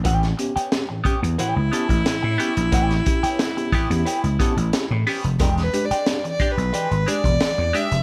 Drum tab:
HH |xxxxx-xxx-xxx-xx|xxxxxxxxxxxxx-ox|xxxxxxxxxxxxx-xx|
SD |-o--o-------o---|-o--o-------o---|-o--o-------o---|
BD |o-----o----o----|o-o---o---o-----|o-----o----o----|